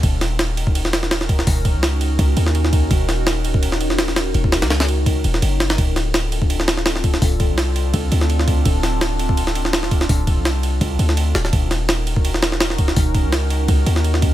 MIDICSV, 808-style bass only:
0, 0, Header, 1, 2, 480
1, 0, Start_track
1, 0, Tempo, 359281
1, 44, Time_signature, 4, 2, 24, 8
1, 19154, End_track
2, 0, Start_track
2, 0, Title_t, "808-style bass"
2, 0, Program_c, 0, 38
2, 43, Note_on_c, 0, 27, 99
2, 1946, Note_off_c, 0, 27, 0
2, 1965, Note_on_c, 0, 27, 100
2, 2333, Note_on_c, 0, 37, 94
2, 2354, Note_off_c, 0, 27, 0
2, 2916, Note_off_c, 0, 37, 0
2, 2924, Note_on_c, 0, 37, 89
2, 3142, Note_off_c, 0, 37, 0
2, 3163, Note_on_c, 0, 39, 92
2, 3866, Note_off_c, 0, 39, 0
2, 3884, Note_on_c, 0, 27, 100
2, 5787, Note_off_c, 0, 27, 0
2, 5804, Note_on_c, 0, 27, 99
2, 6173, Note_on_c, 0, 37, 95
2, 6193, Note_off_c, 0, 27, 0
2, 6998, Note_off_c, 0, 37, 0
2, 7006, Note_on_c, 0, 27, 79
2, 7223, Note_off_c, 0, 27, 0
2, 7245, Note_on_c, 0, 30, 104
2, 7707, Note_off_c, 0, 30, 0
2, 7724, Note_on_c, 0, 26, 100
2, 9627, Note_off_c, 0, 26, 0
2, 9644, Note_on_c, 0, 26, 97
2, 10016, Note_on_c, 0, 36, 94
2, 10036, Note_off_c, 0, 26, 0
2, 10596, Note_off_c, 0, 36, 0
2, 10604, Note_on_c, 0, 36, 85
2, 10822, Note_off_c, 0, 36, 0
2, 10847, Note_on_c, 0, 38, 93
2, 11548, Note_off_c, 0, 38, 0
2, 11565, Note_on_c, 0, 26, 98
2, 13467, Note_off_c, 0, 26, 0
2, 13484, Note_on_c, 0, 26, 99
2, 13853, Note_on_c, 0, 36, 94
2, 13873, Note_off_c, 0, 26, 0
2, 14436, Note_off_c, 0, 36, 0
2, 14444, Note_on_c, 0, 36, 85
2, 14662, Note_off_c, 0, 36, 0
2, 14684, Note_on_c, 0, 38, 92
2, 15147, Note_off_c, 0, 38, 0
2, 15163, Note_on_c, 0, 26, 85
2, 15382, Note_off_c, 0, 26, 0
2, 15402, Note_on_c, 0, 27, 96
2, 17305, Note_off_c, 0, 27, 0
2, 17322, Note_on_c, 0, 27, 101
2, 17693, Note_on_c, 0, 37, 96
2, 17713, Note_off_c, 0, 27, 0
2, 18274, Note_off_c, 0, 37, 0
2, 18282, Note_on_c, 0, 37, 88
2, 18501, Note_off_c, 0, 37, 0
2, 18524, Note_on_c, 0, 39, 93
2, 19154, Note_off_c, 0, 39, 0
2, 19154, End_track
0, 0, End_of_file